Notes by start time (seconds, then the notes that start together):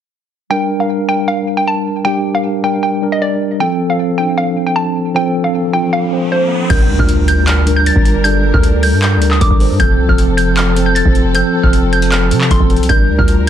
0.50 G3 D4 A#4 G5
0.79 G3 D4 A#4 F5
1.08 G3 D4 A#4 G5
1.28 F5
1.57 G5
1.68 A5
2.05 G3 D4 G4 G5
2.34 G3 D4 A#4 F5
2.63 G3 D4 A#4 G5
2.83 G5
3.02 G3 D4 A#4
3.12 D#5
3.22 D5
3.60 F3 C4 A4 G5
3.89 F3 C4 A4 F5
4.18 F3 C4 D4 G5
4.38 F5
4.67 G5
4.76 A5
5.14 F3 C4 A4 G5, riser
5.43 F3 C4 A4 F5
5.72 F3 C4 F4 G5
5.93 F5
6.11 F3 C4 C5
6.32 C5
6.69 G1 G3 D4 A#4 G6, kick, closed hi-hat, crash, impact
6.89 D2
6.98 D2 G3 D4 F4 F6, kick
7.09 closed hi-hat
7.28 G6, closed hi-hat
7.47 F6, clap, closed hi-hat
7.66 G3 D4 A#4, closed hi-hat
7.76 G6
7.86 A6, closed hi-hat
7.96 G1, kick
8.05 closed hi-hat
8.24 G3 D4 A4 G6, closed hi-hat
8.53 D2 G3 D4 A#4 F6, kick
8.63 closed hi-hat
8.83 G6, open hi-hat
8.93 G2
9.02 G6, clap, closed hi-hat
9.17 D2
9.21 G3 D4 A#4, closed hi-hat
9.31 D#6, clap
9.41 G1 D6, kick, closed hi-hat
9.51 G1, kick
9.60 G3 D4 C5, open hi-hat
9.70 G2
9.79 F1 F3 C4 A4 G6, kick, closed hi-hat
9.99 C2
10.08 F1 F3 C4 A4 F6, kick
10.18 closed hi-hat
10.37 G6, closed hi-hat
10.57 F6, clap, closed hi-hat
10.76 F3 C4 A4, closed hi-hat
10.86 G6
10.95 A6, closed hi-hat
11.06 F1, kick
11.15 closed hi-hat
11.34 F3 C4 A4 G6, closed hi-hat
11.63 F1 F3 C4 A4 F6, kick
11.73 closed hi-hat
11.93 G6, closed hi-hat
12.02 closed hi-hat
12.12 F6, clap, closed hi-hat
12.31 C3 F3 C4 A4, closed hi-hat
12.41 clap
12.51 F1 C6, kick, closed hi-hat
12.60 F1, kick
12.69 F3 C4 A4, closed hi-hat, open hi-hat
12.76 C2, closed hi-hat
12.83 closed hi-hat
12.89 G1 G3 D4 A#4 G6, kick, closed hi-hat
13.09 D2
13.18 D2 G3 D4 F4 F6, kick
13.28 closed hi-hat